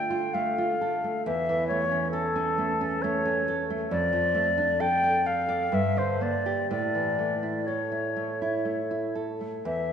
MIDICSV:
0, 0, Header, 1, 3, 480
1, 0, Start_track
1, 0, Tempo, 925926
1, 655, Time_signature, 3, 2, 24, 8
1, 656, Tempo, 884956
1, 2576, Tempo, 928793
1, 3056, Tempo, 969305
1, 4496, Tempo, 1011804
1, 5105, End_track
2, 0, Start_track
2, 0, Title_t, "Flute"
2, 0, Program_c, 0, 73
2, 0, Note_on_c, 0, 79, 86
2, 175, Note_on_c, 0, 77, 68
2, 183, Note_off_c, 0, 79, 0
2, 649, Note_off_c, 0, 77, 0
2, 652, Note_on_c, 0, 76, 79
2, 875, Note_off_c, 0, 76, 0
2, 878, Note_on_c, 0, 73, 78
2, 1113, Note_off_c, 0, 73, 0
2, 1117, Note_on_c, 0, 69, 81
2, 1608, Note_on_c, 0, 73, 81
2, 1616, Note_off_c, 0, 69, 0
2, 1947, Note_off_c, 0, 73, 0
2, 2090, Note_on_c, 0, 74, 95
2, 2576, Note_on_c, 0, 79, 103
2, 2584, Note_off_c, 0, 74, 0
2, 2813, Note_on_c, 0, 77, 83
2, 2821, Note_off_c, 0, 79, 0
2, 3059, Note_on_c, 0, 76, 87
2, 3066, Note_off_c, 0, 77, 0
2, 3178, Note_on_c, 0, 72, 74
2, 3186, Note_off_c, 0, 76, 0
2, 3298, Note_on_c, 0, 74, 79
2, 3305, Note_off_c, 0, 72, 0
2, 3536, Note_off_c, 0, 74, 0
2, 3540, Note_on_c, 0, 74, 82
2, 4012, Note_on_c, 0, 73, 64
2, 4019, Note_off_c, 0, 74, 0
2, 4731, Note_off_c, 0, 73, 0
2, 4976, Note_on_c, 0, 76, 70
2, 5105, Note_off_c, 0, 76, 0
2, 5105, End_track
3, 0, Start_track
3, 0, Title_t, "Nylon-string guitar"
3, 0, Program_c, 1, 24
3, 0, Note_on_c, 1, 50, 60
3, 0, Note_on_c, 1, 57, 47
3, 53, Note_on_c, 1, 65, 50
3, 127, Note_off_c, 1, 57, 0
3, 179, Note_on_c, 1, 57, 51
3, 250, Note_off_c, 1, 65, 0
3, 302, Note_on_c, 1, 65, 51
3, 373, Note_off_c, 1, 57, 0
3, 422, Note_on_c, 1, 69, 49
3, 494, Note_off_c, 1, 65, 0
3, 540, Note_on_c, 1, 57, 43
3, 610, Note_off_c, 1, 69, 0
3, 635, Note_off_c, 1, 50, 0
3, 654, Note_on_c, 1, 40, 64
3, 656, Note_off_c, 1, 57, 0
3, 778, Note_on_c, 1, 52, 47
3, 893, Note_on_c, 1, 57, 51
3, 963, Note_off_c, 1, 52, 0
3, 1008, Note_on_c, 1, 61, 51
3, 1080, Note_off_c, 1, 57, 0
3, 1125, Note_on_c, 1, 69, 52
3, 1200, Note_off_c, 1, 61, 0
3, 1247, Note_on_c, 1, 61, 50
3, 1321, Note_off_c, 1, 69, 0
3, 1369, Note_on_c, 1, 57, 49
3, 1445, Note_off_c, 1, 61, 0
3, 1493, Note_on_c, 1, 61, 54
3, 1566, Note_off_c, 1, 57, 0
3, 1619, Note_on_c, 1, 57, 57
3, 1688, Note_off_c, 1, 61, 0
3, 1734, Note_on_c, 1, 61, 55
3, 1810, Note_off_c, 1, 57, 0
3, 1857, Note_on_c, 1, 69, 57
3, 1926, Note_off_c, 1, 61, 0
3, 1978, Note_on_c, 1, 57, 51
3, 2046, Note_off_c, 1, 69, 0
3, 2070, Note_off_c, 1, 40, 0
3, 2092, Note_on_c, 1, 41, 69
3, 2095, Note_off_c, 1, 57, 0
3, 2208, Note_on_c, 1, 53, 53
3, 2327, Note_on_c, 1, 57, 55
3, 2401, Note_off_c, 1, 53, 0
3, 2452, Note_on_c, 1, 62, 54
3, 2523, Note_off_c, 1, 57, 0
3, 2574, Note_on_c, 1, 69, 57
3, 2646, Note_off_c, 1, 62, 0
3, 2693, Note_off_c, 1, 69, 0
3, 2695, Note_on_c, 1, 74, 58
3, 2811, Note_on_c, 1, 69, 58
3, 2885, Note_off_c, 1, 74, 0
3, 2928, Note_on_c, 1, 74, 60
3, 3005, Note_off_c, 1, 69, 0
3, 3034, Note_off_c, 1, 41, 0
3, 3049, Note_on_c, 1, 43, 64
3, 3053, Note_off_c, 1, 74, 0
3, 3171, Note_on_c, 1, 50, 54
3, 3292, Note_on_c, 1, 58, 50
3, 3363, Note_off_c, 1, 50, 0
3, 3415, Note_on_c, 1, 67, 46
3, 3484, Note_off_c, 1, 58, 0
3, 3516, Note_off_c, 1, 43, 0
3, 3534, Note_off_c, 1, 67, 0
3, 3537, Note_on_c, 1, 45, 60
3, 3658, Note_on_c, 1, 52, 42
3, 3775, Note_on_c, 1, 57, 40
3, 3848, Note_off_c, 1, 52, 0
3, 3895, Note_on_c, 1, 64, 46
3, 3966, Note_off_c, 1, 57, 0
3, 4018, Note_on_c, 1, 69, 47
3, 4086, Note_off_c, 1, 64, 0
3, 4137, Note_on_c, 1, 64, 42
3, 4208, Note_off_c, 1, 69, 0
3, 4260, Note_on_c, 1, 57, 45
3, 4327, Note_off_c, 1, 64, 0
3, 4384, Note_on_c, 1, 64, 43
3, 4450, Note_off_c, 1, 57, 0
3, 4500, Note_on_c, 1, 57, 43
3, 4570, Note_off_c, 1, 64, 0
3, 4622, Note_on_c, 1, 64, 43
3, 4686, Note_off_c, 1, 57, 0
3, 4739, Note_on_c, 1, 69, 41
3, 4809, Note_off_c, 1, 64, 0
3, 4859, Note_on_c, 1, 57, 39
3, 4928, Note_off_c, 1, 69, 0
3, 4955, Note_off_c, 1, 45, 0
3, 4975, Note_on_c, 1, 40, 57
3, 4976, Note_off_c, 1, 57, 0
3, 5105, Note_off_c, 1, 40, 0
3, 5105, End_track
0, 0, End_of_file